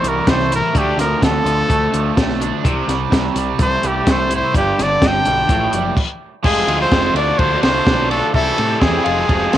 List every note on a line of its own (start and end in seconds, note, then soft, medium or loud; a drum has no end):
0.00 0.20 C2 medium
0.00 0.52 C3 medium
0.00 0.24 C3 medium
0.00 0.25 E3 medium
0.00 0.75 G3 medium
0.00 0.27 A3 medium
0.04 closed hi-hat medium
0.08 0.31 A#4 medium
0.27 0.61 C2 medium
0.27 0.49 C3 medium
0.27 0.49 E3 medium
0.27 1.69 A3 medium
0.27 0.52 C5 medium
0.27 kick loud
0.27 snare loud
0.27 closed hi-hat medium
0.40 snare soft
0.51 0.72 C3 medium
0.51 0.73 E3 medium
0.51 0.75 E4 medium
0.51 closed hi-hat medium
0.56 0.79 A#4 medium
0.73 0.92 D2 medium
0.73 0.96 D3 loud
0.73 0.97 A3 loud
0.73 0.97 D4 loud
0.73 kick loud
0.73 closed hi-hat medium
0.78 0.99 G4 medium
0.97 1.14 D2 medium
0.97 1.20 D3 medium
0.97 1.44 F3 medium
0.97 1.20 A3 medium
0.97 1.23 A#4 medium
0.97 snare soft
0.97 closed hi-hat medium
1.21 1.39 D2 medium
1.21 1.43 D3 medium
1.21 1.43 A3 medium
1.21 2.16 A4 loud
1.21 kick medium
1.21 snare loud
1.21 closed hi-hat medium
1.45 1.62 D2 medium
1.45 1.67 D3 medium
1.45 1.93 F3 medium
1.45 1.67 A3 medium
1.45 closed hi-hat medium
1.69 1.87 D2 medium
1.69 1.91 D3 medium
1.69 1.91 A3 medium
1.69 kick loud
1.69 closed hi-hat medium
1.92 2.10 D2 medium
1.92 2.14 D3 medium
1.92 2.65 F3 medium
1.92 2.14 A3 medium
1.92 closed hi-hat medium
2.17 2.51 B1 medium
2.17 2.38 D3 medium
2.17 2.39 A3 medium
2.17 kick loud
2.17 snare loud
2.17 closed hi-hat loud
2.30 snare soft
2.40 2.62 D3 medium
2.40 2.62 A3 medium
2.40 2.65 D4 medium
2.40 closed hi-hat medium
2.63 2.82 C2 medium
2.63 2.86 C3 loud
2.63 2.87 G3 loud
2.63 2.87 C4 loud
2.63 kick loud
2.63 closed hi-hat medium
2.87 3.05 C2 medium
2.87 3.09 C3 medium
2.87 3.10 G3 medium
2.87 snare soft
2.87 closed hi-hat medium
3.11 3.29 C2 medium
3.11 3.33 C3 medium
3.11 3.33 G3 medium
3.11 kick loud
3.11 snare loud
3.11 closed hi-hat loud
3.34 3.52 C2 medium
3.34 3.57 C3 medium
3.34 3.57 G3 medium
3.34 closed hi-hat medium
3.58 3.76 C2 medium
3.58 3.80 C3 medium
3.58 3.80 G3 medium
3.58 4.04 A3 medium
3.58 kick loud
3.58 closed hi-hat medium
3.63 3.89 C5 loud
3.82 4.00 C2 medium
3.82 4.04 C3 medium
3.82 4.04 G3 medium
3.82 closed hi-hat medium
3.87 4.13 G4 medium
4.05 4.41 C2 medium
4.05 4.28 C3 medium
4.05 4.28 G3 medium
4.05 4.54 A3 medium
4.05 kick loud
4.05 snare loud
4.05 closed hi-hat loud
4.11 4.32 C5 medium
4.30 4.52 C3 medium
4.30 4.52 G3 medium
4.30 4.54 E4 medium
4.30 closed hi-hat medium
4.36 4.57 C5 medium
4.54 4.72 G1 medium
4.54 4.77 G2 loud
4.54 4.77 D3 loud
4.54 4.77 G3 loud
4.54 4.84 G4 medium
4.54 kick loud
4.54 closed hi-hat medium
4.78 4.95 G1 medium
4.78 4.99 G2 medium
4.78 5.00 D3 medium
4.78 snare soft
4.78 closed hi-hat medium
4.83 5.09 D5 medium
5.02 5.19 G1 medium
5.02 5.23 G2 medium
5.02 5.24 D3 medium
5.02 kick loud
5.02 snare loud
5.02 closed hi-hat medium
5.07 5.97 G5 loud
5.25 5.43 B1 medium
5.25 5.47 G2 medium
5.25 5.47 D3 medium
5.25 5.50 G3 medium
5.25 closed hi-hat medium
5.48 5.66 A1 medium
5.48 5.70 A2 medium
5.48 5.71 F3 loud
5.48 5.71 A3 medium
5.48 kick loud
5.48 closed hi-hat medium
5.72 5.90 F#1 loud
5.72 5.94 A2 medium
5.72 5.94 F3 medium
5.72 5.97 G3 medium
5.72 closed hi-hat medium
5.97 kick loud
5.97 crash medium
6.43 6.61 F1 medium
6.43 6.66 F3 medium
6.43 6.66 G#3 loud
6.43 6.67 C4 loud
6.43 6.67 F4 loud
6.43 6.78 G#4 loud
6.43 7.19 F5 medium
6.43 kick loud
6.43 crash loud
6.67 6.84 D2 medium
6.67 6.89 F3 medium
6.67 6.90 G#3 medium
6.67 6.92 C4 medium
6.67 6.91 F4 medium
6.67 ride medium
6.82 7.14 C5 medium
6.90 7.08 F1 medium
6.90 7.13 F3 loud
6.90 7.14 G#3 medium
6.90 7.14 C4 medium
6.90 7.14 F4 medium
6.90 kick loud
6.90 snare loud
6.90 ride loud
7.14 7.31 D2 medium
7.14 7.36 D3 medium
7.14 7.38 A3 loud
7.14 7.38 D4 medium
7.14 7.38 F4 medium
7.14 7.40 D5 medium
7.14 ride medium
7.18 8.39 D5 medium
7.38 7.56 D2 medium
7.38 7.61 D3 loud
7.38 7.61 A3 medium
7.38 7.62 D4 loud
7.38 7.63 F4 loud
7.38 7.62 C5 loud
7.38 kick loud
7.38 ride medium
7.62 7.79 C2 medium
7.62 7.85 D3 medium
7.62 7.85 A3 medium
7.62 7.85 D4 medium
7.62 7.86 F4 medium
7.62 8.07 C5 medium
7.62 snare medium
7.62 ride medium
7.86 8.20 B1 medium
7.86 8.09 D3 medium
7.86 8.09 A3 medium
7.86 8.10 D4 medium
7.86 8.10 F4 medium
7.86 kick loud
7.86 snare loud
7.86 ride medium
8.10 8.33 D3 medium
8.10 8.33 A3 medium
8.10 8.33 D4 medium
8.10 8.33 F4 loud
8.10 8.33 A4 medium
8.10 ride medium
8.33 8.51 C2 medium
8.33 8.56 C3 medium
8.33 8.57 E3 loud
8.33 8.57 G3 loud
8.33 8.59 C4 loud
8.33 8.58 E4 loud
8.33 8.82 A4 loud
8.33 8.95 E5 medium
8.33 kick loud
8.33 ride loud
8.58 8.75 A2 medium
8.58 8.79 C3 medium
8.58 8.80 E3 medium
8.58 8.81 G3 medium
8.58 8.82 C4 medium
8.58 8.81 E4 medium
8.58 ride medium
8.80 8.98 E2 medium
8.80 9.04 C3 medium
8.80 9.04 E3 loud
8.80 9.04 G3 loud
8.80 9.06 C4 loud
8.80 9.05 E4 loud
8.80 9.58 G#4 medium
8.80 kick loud
8.80 snare loud
8.80 ride medium
8.97 9.05 G5 medium
9.04 9.22 F1 medium
9.04 9.27 F3 medium
9.04 9.28 G#3 medium
9.04 9.30 C4 medium
9.04 9.29 F4 loud
9.04 9.58 F5 medium
9.04 ride medium
9.29 9.46 F1 medium
9.29 9.51 F3 loud
9.29 9.52 G#3 medium
9.29 9.53 C4 loud
9.29 9.52 F4 loud
9.29 kick loud
9.29 ride medium
9.52 9.58 D2 medium
9.52 9.58 F3 medium
9.52 9.58 G#3 medium
9.52 9.58 C4 medium
9.52 9.58 F4 medium
9.52 snare medium
9.52 ride medium